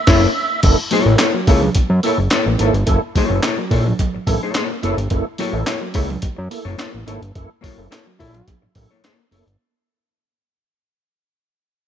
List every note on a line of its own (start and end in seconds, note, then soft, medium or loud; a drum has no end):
0.00 0.60 E5 loud
0.07 0.27 F#1 loud
0.07 0.28 A#3 loud
0.07 0.23 E4 loud
0.07 0.28 E4 loud
0.07 0.27 A4 loud
0.07 0.27 C#5 loud
0.07 kick loud
0.07 snare loud
0.07 crash medium
0.63 0.75 F#1 loud
0.63 0.78 A#3 medium
0.63 0.78 E4 medium
0.63 0.78 A4 medium
0.63 kick loud
0.63 closed hi-hat medium
0.63 crash medium
0.63 muted conga soft
0.91 1.06 F#3 medium
0.91 1.12 A#3 medium
0.91 1.12 E4 medium
0.91 1.13 A4 medium
0.91 1.13 C#5 loud
0.91 open hi-hat medium
0.91 muted conga medium
1.06 1.16 A1 medium
1.06 1.19 A#3 medium
1.06 1.18 E4 medium
1.06 1.18 A4 medium
1.19 1.39 A#3 medium
1.19 1.26 E4 soft
1.19 1.35 E4 medium
1.19 1.26 A4 soft
1.19 1.34 A4 medium
1.19 1.34 C#5 loud
1.19 snare loud
1.19 clap loud
1.19 closed hi-hat loud
1.19 high conga medium
1.34 1.47 F#3 medium
1.34 muted hollow-body jazz guitar stroke soft
1.47 1.70 C#2 loud
1.47 1.62 A#3 medium
1.47 1.64 A#3 medium
1.47 1.62 E4 medium
1.47 1.64 E4 medium
1.47 1.62 A4 medium
1.47 1.63 A4 medium
1.47 1.63 C#5 medium
1.47 kick loud
1.47 open hi-hat medium
1.62 muted hollow-body jazz guitar stroke soft
1.62 low conga medium
1.75 1.82 F#2 medium
1.75 muted hollow-body jazz guitar stroke soft
1.75 kick loud
1.75 closed hi-hat medium
1.75 muted conga medium
1.90 2.00 F#2 loud
2.03 2.17 A#3 medium
2.03 2.19 A#3 medium
2.03 2.18 E4 medium
2.03 2.20 E4 medium
2.03 2.18 A4 loud
2.03 2.19 A4 medium
2.03 2.18 C#5 medium
2.03 open hi-hat medium
2.03 muted conga medium
2.18 2.29 F#1 medium
2.18 muted hollow-body jazz guitar stroke soft
2.30 2.52 A#3 medium
2.30 2.48 E4 medium
2.30 2.47 A4 loud
2.30 2.46 C#5 loud
2.30 snare loud
2.30 clap medium
2.30 closed hi-hat loud
2.30 high conga medium
2.46 2.57 A1 medium
2.46 muted hollow-body jazz guitar stroke soft
2.58 2.71 G#1 medium
2.58 2.73 A#3 medium
2.58 2.75 A#3 medium
2.58 2.73 E4 medium
2.58 2.75 E4 medium
2.58 2.73 A4 loud
2.58 2.75 A4 medium
2.58 2.74 C#5 medium
2.58 closed hi-hat medium
2.58 high conga medium
2.74 2.84 G1 medium
2.74 muted hollow-body jazz guitar stroke soft
2.74 closed hi-hat soft
2.86 2.99 F#1 loud
2.86 3.01 A#3 medium
2.86 3.01 E4 medium
2.86 3.01 A4 medium
2.86 kick loud
2.86 closed hi-hat medium
3.15 3.29 F#3 medium
3.15 3.36 A#3 medium
3.15 3.37 E4 medium
3.15 3.37 A4 medium
3.15 3.37 C#5 loud
3.15 kick medium
3.15 open hi-hat medium
3.15 muted conga medium
3.29 3.41 F#1 medium
3.29 3.42 A#3 medium
3.29 3.42 E4 medium
3.29 3.42 A4 medium
3.43 3.63 A#3 medium
3.43 3.49 E4 soft
3.43 3.59 E4 loud
3.43 3.49 A4 soft
3.43 3.58 A4 medium
3.43 3.58 C#5 medium
3.43 snare loud
3.43 clap loud
3.43 closed hi-hat loud
3.43 high conga medium
3.58 3.71 F#3 medium
3.58 muted hollow-body jazz guitar stroke soft
3.71 3.93 A#1 loud
3.71 3.85 A#3 medium
3.71 3.87 A#3 medium
3.71 3.85 E4 medium
3.71 3.87 E4 medium
3.71 3.85 A4 medium
3.71 3.86 A4 medium
3.71 3.85 C#5 medium
3.71 kick loud
3.71 open hi-hat medium
3.87 muted hollow-body jazz guitar stroke soft
3.87 low conga medium
3.99 muted hollow-body jazz guitar stroke soft
3.99 kick loud
3.99 closed hi-hat medium
3.99 muted conga medium
3.99 low conga medium
4.14 4.19 A1 soft
4.14 muted hollow-body jazz guitar stroke soft
4.27 4.39 A1 loud
4.27 4.41 A#3 medium
4.27 4.41 E4 medium
4.27 4.41 A4 loud
4.27 kick medium
4.27 open hi-hat medium
4.27 muted conga medium
4.27 low conga medium
4.43 4.54 A#3 medium
4.43 4.54 E4 medium
4.43 4.55 A4 medium
4.43 4.55 C#5 medium
4.54 4.75 A#3 medium
4.54 4.70 E4 medium
4.54 4.69 A4 loud
4.54 4.69 C#5 loud
4.54 snare loud
4.54 clap loud
4.54 closed hi-hat loud
4.54 high conga medium
4.71 muted hollow-body jazz guitar stroke soft
4.83 4.95 F#1 medium
4.83 4.97 A#3 loud
4.83 4.99 A#3 medium
4.83 4.97 E4 medium
4.83 4.98 E4 medium
4.83 4.97 A4 loud
4.83 4.98 A4 medium
4.83 4.97 C#5 medium
4.83 closed hi-hat medium
4.83 high conga medium
4.98 5.08 G1 medium
4.98 muted hollow-body jazz guitar stroke medium
4.98 closed hi-hat soft
5.10 5.23 F#1 loud
5.10 5.25 A#3 medium
5.10 5.25 E4 medium
5.10 5.26 A4 loud
5.10 kick medium
5.10 closed hi-hat medium
5.10 muted conga soft
5.38 5.53 F#3 medium
5.38 5.58 A#3 medium
5.38 5.59 E4 medium
5.38 5.59 A4 loud
5.38 5.59 C#5 loud
5.38 open hi-hat medium
5.38 muted conga medium
5.53 5.64 A1 medium
5.53 5.66 A#3 medium
5.53 5.65 E4 medium
5.53 5.65 A4 medium
5.66 5.86 A#3 medium
5.66 5.73 E4 soft
5.66 5.81 E4 medium
5.66 5.73 A4 soft
5.66 5.81 A4 medium
5.66 5.81 C#5 loud
5.66 snare loud
5.66 clap medium
5.66 closed hi-hat loud
5.66 high conga medium
5.81 5.94 F#3 medium
5.81 muted hollow-body jazz guitar stroke soft
5.94 6.17 C#2 medium
5.94 6.10 A#3 medium
5.94 6.09 A#3 medium
5.94 6.08 E4 medium
5.94 6.09 E4 medium
5.94 6.08 A4 medium
5.94 6.09 A4 medium
5.94 6.07 C#5 medium
5.94 kick loud
5.94 open hi-hat medium
6.08 muted hollow-body jazz guitar stroke soft
6.08 low conga medium
6.22 6.29 F#2 medium
6.22 muted hollow-body jazz guitar stroke soft
6.22 kick medium
6.22 closed hi-hat medium
6.22 muted conga medium
6.36 6.49 F#2 loud
6.36 muted hollow-body jazz guitar stroke soft
6.50 6.65 A#3 medium
6.50 6.65 E4 medium
6.50 6.65 A4 medium
6.50 open hi-hat medium
6.50 muted conga medium
6.65 6.76 F#1 medium
6.65 6.77 A#3 medium
6.65 6.77 E4 medium
6.65 6.78 A4 medium
6.65 6.78 C#5 medium
6.78 6.98 A#3 medium
6.78 6.92 E4 loud
6.78 6.92 A4 medium
6.78 6.91 C#5 medium
6.78 snare loud
6.78 clap medium
6.78 closed hi-hat medium
6.78 high conga medium
6.93 7.05 A1 medium
6.93 muted hollow-body jazz guitar stroke soft
7.07 7.19 G#1 medium
7.07 7.22 A#3 medium
7.07 7.21 A#3 loud
7.07 7.21 E4 medium
7.07 7.22 E4 medium
7.07 7.22 A4 loud
7.07 7.20 A4 medium
7.07 7.20 C#5 medium
7.07 closed hi-hat medium
7.07 high conga medium
7.21 7.32 G1 medium
7.21 muted hollow-body jazz guitar stroke medium
7.21 closed hi-hat soft
7.35 7.47 F#1 loud
7.35 7.49 A#3 medium
7.35 7.50 E4 medium
7.35 7.50 A4 loud
7.35 kick loud
7.35 closed hi-hat medium
7.61 7.78 F#3 medium
7.61 7.82 A#3 medium
7.61 7.82 E4 medium
7.61 7.82 A4 medium
7.61 7.82 C#5 medium
7.61 kick medium
7.61 open hi-hat medium
7.61 muted conga soft
7.78 7.88 F#1 medium
7.78 7.91 A#3 medium
7.78 7.91 E4 medium
7.78 7.91 A4 medium
7.91 8.10 A#3 medium
7.91 8.06 E4 medium
7.91 7.98 E4 soft
7.91 8.05 A4 medium
7.91 7.97 A4 soft
7.91 8.05 C#5 medium
7.91 snare loud
7.91 clap medium
7.91 closed hi-hat loud
7.91 high conga medium
8.06 8.19 F#3 medium
8.06 muted hollow-body jazz guitar stroke medium
8.19 8.42 A#1 medium
8.19 8.35 A#3 medium
8.19 8.34 A#3 medium
8.19 8.56 E4 loud
8.19 8.34 E4 medium
8.19 8.34 A4 medium
8.19 8.33 A4 medium
8.19 8.33 C#5 medium
8.19 kick loud
8.19 open hi-hat medium
8.34 muted hollow-body jazz guitar stroke soft
8.34 closed hi-hat soft
8.34 low conga medium
8.47 muted hollow-body jazz guitar stroke soft
8.47 kick medium
8.47 closed hi-hat medium
8.47 muted conga medium
8.47 low conga medium
8.62 8.68 A1 medium
8.62 muted hollow-body jazz guitar stroke soft
8.75 8.87 A1 medium
8.75 8.89 A#3 medium
8.75 8.90 E4 medium
8.75 8.90 A4 medium
8.75 kick loud
8.75 open hi-hat medium
8.75 muted conga medium
8.75 low conga medium
8.91 9.03 A#3 medium
8.91 9.03 E4 medium
8.91 9.04 A4 medium
8.91 9.04 C#5 medium
9.04 9.24 A#3 medium
9.04 9.19 E4 medium
9.04 9.18 A4 medium
9.04 9.18 C#5 loud
9.04 snare loud
9.04 clap medium
9.04 closed hi-hat loud
9.04 high conga medium
9.19 muted hollow-body jazz guitar stroke medium
9.31 9.43 F#1 medium
9.31 9.47 A#3 medium
9.31 9.46 A#3 medium
9.31 9.46 E4 medium
9.31 9.46 A4 medium
9.31 9.46 A4 loud
9.31 9.45 C#5 medium
9.31 open hi-hat medium
9.31 high conga medium
9.46 9.57 G1 medium
9.46 muted hollow-body jazz guitar stroke soft
9.46 closed hi-hat soft